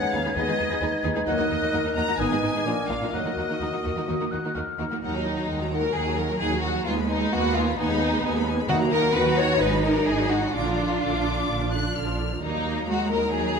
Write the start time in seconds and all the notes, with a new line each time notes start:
Already playing: C#4 B4 F#5 G#6
0.01 D#2 G#3 D#4 G#4
0.13 D#2 G#3 D#4 G#4 B4 F5
0.25 D#2 G#3 D#4 G#4 B4
0.35 D#2 G#3 B3 D#4 G#4 B4 D#5
0.47 D#2 G#3 D#4 G#4 B4
0.58 D#2 G#3 D#4 G#4
0.69 D#2 G#3 D#4 G#4 B4
0.81 D#2 G#3 D#4 G#4 B4
1.04 D#2 G#3 D#4 G#4 B4
1.15 D#2 G#3 D#4 G#4 B4
1.26 D#2 F#3 A#3 D#4 F#4 A#4 D#5 F#6
1.38 D#2 A#3 D#4 F#4 D#5
1.50 D#2 A#3 D#4 A#4
1.62 D#2 A#3 D#4 F#4 D#5
1.73 D#2 A#3 D#4 F#4 D#5
1.85 D#2 A#3 D#4 A#4
1.95 D#2 A#3 D#4 F#4 D#5 A#5
2.08 D#2 A#3 D#4 F#4 D#5
2.18 G#1 G#2 D#3 B3 D#4 G#4 B4 D#5 G#5 D#6
2.31 G#2 B3 D#4 G#4 D#5
2.42 G#1 G#2 B3 D#4 B4
2.54 G#2 B3 D#4 G#4 D#5
2.65 A#1 A#2 F3 A#3 D4 F4 A#4 D6
2.89 A#1 A#2 A#3 D4 F4 A#4 F5
3.01 A#2 A#3 D4 F4 A#4
3.13 D#2 D#3 F#3 A#3 D#4 F#4 A#4 D#5 F#6
3.25 D#3 A#3 D#4 F#4 A#4
3.37 D#2 D#3 A#3 D#4 F#4
3.49 D#3 A#3 D#4 F#4 A#4
3.60 D#2 D#3 A#3 D#4 F#4 A#4 D#6
3.73 D#3 A#3 D#4 F#4
3.85 D#2 D#3 A#3 D#4 F#4 A#4
3.96 D#3 A#3 D#4 F#4 A#4
4.07 D#2 D#3 F#3 A#3 D#4 F#4 A#4
4.20 D#3 A#3 D#4 F#4 A#4
4.31 D#2 D#3 A#3 D#4 F#4 F#6
4.44 D#3 A#3 D#4 F#4 A#4
4.55 D#2 D#3 A#3 D#4 F#4 A#4 F6
4.79 D#2 D#3 A#3 D#4 F#4 A#4
4.91 D#3 A#3 D#4 F#4 A#4
5.02 D#2 D#3 F#3 D#4 F#5
5.14 F#3 F#4 A#5
5.25 D#3 D#4 F#5
5.37 F#3 F#4 A#5
5.49 D#2 D#3 G#3 D#4 F#5
5.61 F#3 F#4 A#5
5.72 D#3 D#4 A#4 F#5
5.83 F#3 F#4 A#5
5.95 D#2 D#3 F#3 D#4 G#4 F#5
6.06 F#3 F#4 A#5
6.18 D#3 D#4 A#4 F#5
6.29 F#3 F#4 A#5
6.40 D#2 D#3 D#4 G#4 F#5
6.51 F#3 F#4 A#5
6.62 D#3 D#4 F#4 F#5
6.74 F#3 F#4 A#5
6.86 D#2 G#3 B3 D#4 F4 G#5
6.97 G#3 B3 B5
7.08 B3 D#4 G#5
7.20 G#3 B3 B5
7.31 D#2 A#3 B3 D#4 F#4 G#5
7.43 G#3 B3 B5
7.55 B3 D#4 F4 G#5
7.66 G#3 B3 B5
7.77 D#2 B3 D#4 G#5
7.89 G#3 B3 B5
8.01 B3 D#4 G#5
8.12 G#3 B3 B5
8.24 D#2 B3 D#4 G#5
8.35 G#3 B3 B5
8.47 B3 D#4 G#5
8.58 G#3 B3 B5
8.68 D#2 D#3 A#3 D#4 F#4 F#5
8.81 F#3 F#4 A#5
8.92 D#3 D#4 A#4 F#5
9.03 F#3 F#4 A#5
9.15 D#2 D#3 D#4 F#4 B4 F#5
9.26 F#3 F#4 A#5
9.38 D#3 D#4 C#5 F#5
9.50 F#3 F#4 A#5
9.60 G#1 G#3 D#4 B4 G#5
9.73 F#3 F#4 B5
9.84 G#3 D#4 A#4 G#5
9.95 F#3 F#4 B5
10.07 G#1 G#3 D#4 G#4 G#5
10.19 F#3 F#4 B5
10.31 G#3 D#4 F#4 G#5
10.43 F#3 F#4 B5
10.54 A#1 D3 D4 F4 D6
10.66 F3 F4 A#5
10.77 D3 D4 D6
10.89 F3 F4 A#5
11.01 A#1 D3 D4 D6
11.13 F3 F4
11.25 D3 D4
11.37 F3 F4
11.49 A#1 D3 D4
11.61 F3 F4
11.72 D3 D4 F#6
11.85 F3 F4
11.96 A#1 D3 D4 F6
12.08 F3 F4
12.20 D3 D4
12.32 F3 F4
12.43 D#2 F#3 A#3 D#4 A#5
12.89 G#3 F#4
13.12 A#4
13.34 F#3 G#4